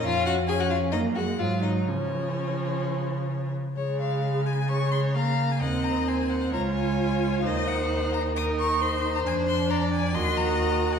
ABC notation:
X:1
M:4/4
L:1/16
Q:1/4=132
K:Db
V:1 name="Violin"
f2 g2 a g f2 e2 g2 f2 e2 | d12- d2 z2 | d2 f4 a2 d'2 c'2 b3 a | g2 b2 a2 g2 b2 a4- a f |
e2 g4 b2 e'2 d'2 c'3 b | a2 c'2 b2 a2 c'2 b4- b g |]
V:2 name="Violin"
F2 G2 A G F2 E2 G2 F2 E2 | D12- D2 z2 | z8 d4 f4 | e4 c4 d8 |
c8 B4 c4- | c4 =d4 e8 |]
V:3 name="Viola"
D4 D4 B,2 A,2 G,4 | F,12- F,2 z2 | A,8 A,4 B,4 | C8 F8 |
E8 E8 | =D8 G8 |]
V:4 name="Cello" clef=bass
F,,8 G,,4 A,,4 | D,12- D,2 z2 | D,16 | E,,8 D,,8 |
E,,16 | F,,8 E,,8 |]